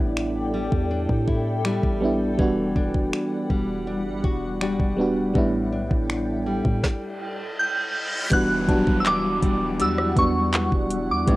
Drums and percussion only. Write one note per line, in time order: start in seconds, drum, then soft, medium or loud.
0.17 finger snap loud
0.72 kick medium
1.09 kick medium
1.28 kick medium
1.65 finger snap loud
1.83 kick medium
2.39 kick loud
2.76 kick medium
2.94 kick medium
3.13 finger snap loud
3.50 kick medium
4.24 kick medium
4.61 finger snap loud
4.80 kick medium
5.35 kick loud
5.91 kick medium
6.10 finger snap loud
6.65 kick medium
6.83 kick loud
6.83 snare medium
8.31 kick loud
8.31 closed hi-hat medium
8.69 kick loud
8.69 closed hi-hat medium
8.87 kick loud
9.06 clap loud
9.06 closed hi-hat medium
9.43 kick medium
9.43 closed hi-hat medium
9.80 closed hi-hat medium
9.98 cross-stick medium
10.17 kick loud
10.17 closed hi-hat medium
10.54 clap loud
10.54 closed hi-hat medium
10.72 kick medium
10.91 closed hi-hat medium
11.28 kick loud
11.28 closed hi-hat medium